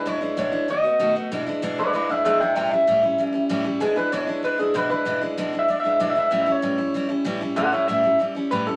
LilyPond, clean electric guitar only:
\new Staff \with { instrumentName = "Clean electric guitar" } { \time 4/4 \key e \mixolydian \tempo 4 = 192 cis''4 cis''4 dis''4. r8 | r4. <b' d''>8 <b' d''>8 <gis' e''>8 <gis' e''>8 <e'' g''>8 | <e'' g''>8 e''2. r8 | gis'8 b'8 cis''4 b'8 gis'8 b'8 b'8~ |
b'8 r8 \tuplet 3/2 { r4 e''8 d''8 e''8 e''8 d''8 e''8 e''8 } | \tuplet 3/2 { e''8 e''8 cis''8~ } cis''4. r4. | <a' fis''>8 <cis'' e''>8 e''4 r4 b'8 a'8 | }